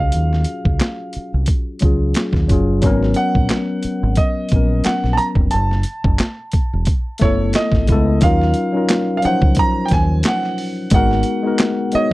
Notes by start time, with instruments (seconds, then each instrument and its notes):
Already playing: fingered electric bass C#2, tine electric piano C#4 F4 F#4 G#4, grand piano F5
0.12 fingered electric bass D#2, closed hi-hat
0.33 snare
0.44 closed hi-hat
0.65 fingered electric bass C#2, kick
0.80 snare, clap, closed hi-hat
1.13 muted fingered electric bass stroke, closed hi-hat
1.34 fingered electric bass C2
1.46 kick, closed hi-hat
1.79 fingered electric bass C#2, tine electric piano F#3 C#4, kick, closed hi-hat
1.84 tine electric piano F4 G#4
2.14 snare, clap, closed hi-hat
2.33 fingered electric bass D#2, kick, snare
2.48 fingered electric bass F#1, tine electric piano F#3 C#4 F4, kick, closed hi-hat
2.53 tine electric piano G#4
2.82 fingered electric bass G#1, tine electric piano F#3 A#3 C#4, kick, closed hi-hat
2.86 tine electric piano B3 A#4
3.03 snare
3.14 grand piano F#5, closed hi-hat
3.35 fingered electric bass A#1, kick
3.49 snare, clap, closed hi-hat
3.83 muted fingered electric bass stroke, closed hi-hat
4.03 fingered electric bass G#1
4.15 grand piano D#5, kick, closed hi-hat
4.49 fingered electric bass A#1, tine electric piano F#3 B3, kick, closed hi-hat
4.54 tine electric piano C#4 A#4
4.84 grand piano F#5, muted fingered electric bass stroke, snare, clap, closed hi-hat
5.04 fingered electric bass A#1, snare
5.13 grand piano A5
5.17 grand piano A#5, closed hi-hat
5.35 fingered electric bass F1, kick
5.51 fingered electric bass F#1, grand piano A5, closed hi-hat
5.71 snare
5.83 closed hi-hat
6.04 fingered electric bass F#1, kick
6.18 snare, clap, closed hi-hat
6.52 muted fingered electric bass stroke, kick, closed hi-hat
6.73 fingered electric bass E1
6.85 kick, closed hi-hat
7.18 fingered electric bass F#1, tine electric piano A3 B3, grand piano C#5, kick, snare, closed hi-hat
7.22 tine electric piano E4 A4
7.53 grand piano D#5, snare, clap, closed hi-hat
7.72 fingered electric bass G#1, kick, snare
7.87 fingered electric bass C#2, tine electric piano G#3 B3 E4, kick, closed hi-hat
7.92 tine electric piano A4
8.21 fingered electric bass D#2, tine electric piano F#3 C#4 D#4 F4, grand piano F5, kick, closed hi-hat
8.25 tine electric piano A#4
8.42 snare
8.54 closed hi-hat
8.72 tine electric piano F#3 C#4 D#4 F4
8.77 tine electric piano A#4
8.89 snare, clap, closed hi-hat
9.17 grand piano F5
9.22 tine electric piano F3 F#3 C#4 D#4, grand piano F#5, muted fingered electric bass stroke, closed hi-hat
9.27 tine electric piano C5
9.42 fingered electric bass C#2, kick
9.55 kick, closed hi-hat
9.59 grand piano A#5
9.86 grand piano G5, closed hi-hat
9.91 fingered electric bass D#2, grand piano G#5, kick, snare
10.23 snare, clap, closed hi-hat
10.27 grand piano F#5
10.43 snare
10.58 open hi-hat
10.90 fingered electric bass G#1, tine electric piano G#3 B3 D#4, grand piano F#5, kick, closed hi-hat
10.95 tine electric piano F#4 A#4
11.11 snare
11.23 closed hi-hat
11.43 tine electric piano G#3 B3 D#4 F#4
11.47 tine electric piano A#4
11.58 snare, clap, closed hi-hat
11.92 tine electric piano G#3 B3 D#4 F#4, grand piano D#5, muted fingered electric bass stroke, closed hi-hat
11.97 tine electric piano C#5